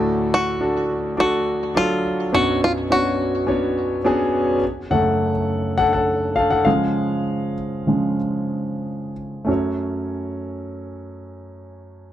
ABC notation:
X:1
M:4/4
L:1/16
Q:1/4=103
K:F#m
V:1 name="Five-string banjo"
z2 F6 F4 ^E4 | F2 ^E2 F8 z4 | z16 | z16 |
z16 |]
V:2 name="Grand piano"
[DFA]4 [DFA]4 [DFA]4 [F,DA]4 | [B,CDFc]4 [B,CDFc]4 [B,CDFc]4 [B,CDFG]4 | z2 [Af]6 [Af] [Af]3 [A^e] [Af] [Ge]2- | [G^e]12- [Ge]2 z2 |
[A,CFc]16 |]
V:3 name="Grand piano" clef=bass
[D,,A,,]12- [D,,A,,]2 z2 | [B,,,F,,]16 | z2 [F,,C,A,]2 z8 z2 [C,^E,G,]2- | [C,^E,G,]4 z2 [C,E,G,]2 z8 |
F,,16 |]